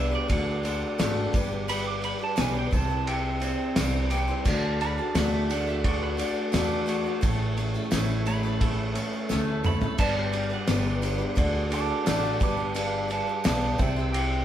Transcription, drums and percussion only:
0.30 kick, ride, tambourine
0.65 ride, tambourine
0.99 snare, ride, tambourine
1.34 kick, ride, tambourine
1.68 ride, tambourine
2.03 ride, tambourine
2.37 snare, ride, tambourine
2.73 kick, ride, tambourine
3.07 ride, tambourine
3.42 ride, tambourine
3.76 snare, ride, tambourine
4.11 ride, tambourine
4.45 kick, tambourine, crash
4.80 ride, tambourine
5.15 snare, ride, tambourine
5.50 ride, tambourine
5.84 kick, ride, tambourine
6.18 ride, tambourine
6.53 snare, ride, tambourine
6.88 ride, tambourine
7.22 kick, ride, tambourine
7.57 ride, tambourine
7.74 tambourine
7.91 snare, ride, tambourine
8.26 ride, tambourine
8.43 tambourine
8.60 kick, ride, tambourine
8.95 ride, tambourine
9.13 tambourine
9.29 snare, tambourine
9.64 mid tom, tambourine
9.81 floor tom, tambourine
9.98 kick, ride, tambourine, crash
10.32 ride, tambourine
10.67 snare, ride, tambourine
10.84 tambourine
11.02 ride, tambourine
11.36 kick, ride, tambourine
11.72 ride, tambourine
12.06 snare, ride, tambourine
12.40 kick, ride, tambourine
12.74 ride, tambourine
13.10 ride, tambourine
13.44 snare, ride, tambourine
13.78 kick, ride, tambourine
14.13 ride, tambourine

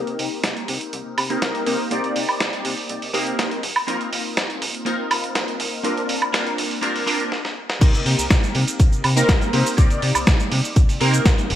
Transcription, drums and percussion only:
0.07 closed hi-hat
0.19 open hi-hat
0.44 snare, closed hi-hat
0.57 closed hi-hat
0.68 open hi-hat
0.81 closed hi-hat
0.93 closed hi-hat
1.18 open hi-hat, high woodblock
1.30 closed hi-hat
1.42 snare, closed hi-hat
1.55 closed hi-hat
1.66 open hi-hat
1.91 closed hi-hat
2.04 closed hi-hat
2.16 open hi-hat
2.29 high woodblock
2.40 snare, closed hi-hat
2.53 closed hi-hat
2.65 open hi-hat
2.78 open hi-hat
2.89 closed hi-hat
3.02 open hi-hat
3.14 open hi-hat
3.27 closed hi-hat
3.39 snare, closed hi-hat
3.51 closed hi-hat
3.63 open hi-hat
3.76 high woodblock
3.88 closed hi-hat
4.01 closed hi-hat
4.13 open hi-hat
4.37 snare, closed hi-hat
4.50 closed hi-hat
4.62 open hi-hat
4.75 closed hi-hat
4.86 closed hi-hat
5.11 open hi-hat, high woodblock
5.24 closed hi-hat
5.35 snare, closed hi-hat
5.48 closed hi-hat
5.60 open hi-hat
5.85 closed hi-hat
5.97 closed hi-hat
6.09 open hi-hat
6.22 closed hi-hat, high woodblock
6.34 snare, closed hi-hat
6.47 closed hi-hat
6.58 open hi-hat
6.71 open hi-hat
6.83 closed hi-hat
6.96 open hi-hat
7.07 open hi-hat
7.20 closed hi-hat
7.32 snare
7.45 snare
7.70 snare
7.81 kick, closed hi-hat, crash, shaker
7.94 closed hi-hat, shaker
8.06 open hi-hat
8.19 shaker
8.30 kick, snare, closed hi-hat, shaker
8.43 closed hi-hat, shaker
8.55 open hi-hat
8.68 closed hi-hat, shaker
8.80 kick, closed hi-hat, shaker
8.92 shaker
9.04 open hi-hat, high woodblock
9.17 closed hi-hat, shaker
9.29 kick, snare, closed hi-hat, shaker
9.41 closed hi-hat, shaker
9.53 open hi-hat
9.66 shaker
9.78 kick, closed hi-hat, shaker
9.90 closed hi-hat, shaker
10.02 open hi-hat
10.15 high woodblock, shaker
10.27 kick, snare, closed hi-hat, shaker
10.40 closed hi-hat, shaker
10.52 open hi-hat
10.64 open hi-hat, shaker
10.76 kick, closed hi-hat, shaker
10.89 open hi-hat, shaker
11.01 open hi-hat
11.14 closed hi-hat, shaker
11.25 kick, snare, closed hi-hat, shaker
11.38 closed hi-hat, shaker
11.50 open hi-hat

